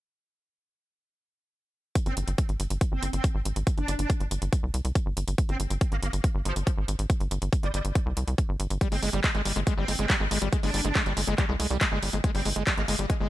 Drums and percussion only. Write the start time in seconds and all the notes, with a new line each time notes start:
1.95 kick, closed hi-hat
2.06 closed hi-hat
2.17 closed hi-hat
2.28 closed hi-hat
2.38 kick, closed hi-hat
2.49 closed hi-hat
2.60 closed hi-hat
2.70 closed hi-hat
2.81 kick, closed hi-hat
3.03 closed hi-hat
3.13 closed hi-hat
3.24 kick, closed hi-hat
3.45 closed hi-hat
3.56 closed hi-hat
3.67 kick, closed hi-hat
3.78 closed hi-hat
3.88 closed hi-hat
3.99 closed hi-hat
4.10 kick, closed hi-hat
4.20 closed hi-hat
4.31 closed hi-hat
4.42 closed hi-hat
4.53 kick, closed hi-hat
4.74 closed hi-hat
4.85 closed hi-hat
4.95 kick, closed hi-hat
5.17 closed hi-hat
5.28 closed hi-hat
5.38 kick, closed hi-hat
5.49 closed hi-hat
5.60 closed hi-hat
5.70 closed hi-hat
5.81 kick, closed hi-hat
5.92 closed hi-hat
6.03 closed hi-hat
6.13 closed hi-hat
6.24 kick, closed hi-hat
6.45 closed hi-hat
6.56 closed hi-hat
6.67 kick, closed hi-hat
6.88 closed hi-hat
6.99 closed hi-hat
7.10 kick, closed hi-hat
7.20 closed hi-hat
7.31 closed hi-hat
7.42 closed hi-hat
7.53 kick, closed hi-hat
7.63 closed hi-hat
7.74 closed hi-hat
7.85 closed hi-hat
7.95 kick, closed hi-hat
8.17 closed hi-hat
8.28 closed hi-hat
8.38 kick, closed hi-hat
8.60 closed hi-hat
8.70 closed hi-hat
8.81 kick, closed hi-hat
8.92 open hi-hat
9.03 open hi-hat
9.13 closed hi-hat
9.24 kick, clap, closed hi-hat
9.35 closed hi-hat
9.45 open hi-hat
9.56 closed hi-hat
9.67 kick, closed hi-hat
9.88 open hi-hat
9.99 closed hi-hat
10.10 kick, clap, closed hi-hat
10.31 open hi-hat
10.42 closed hi-hat
10.53 kick, closed hi-hat
10.63 open hi-hat
10.74 open hi-hat
10.85 closed hi-hat
10.95 kick, clap, closed hi-hat
11.06 closed hi-hat
11.17 open hi-hat
11.28 closed hi-hat
11.38 kick, clap, closed hi-hat
11.60 open hi-hat
11.70 closed hi-hat
11.81 kick, clap, closed hi-hat
12.03 open hi-hat
12.13 closed hi-hat
12.24 kick, closed hi-hat
12.35 open hi-hat
12.45 open hi-hat
12.56 closed hi-hat
12.67 kick, clap, closed hi-hat
12.78 closed hi-hat
12.88 open hi-hat
12.99 closed hi-hat
13.10 kick, closed hi-hat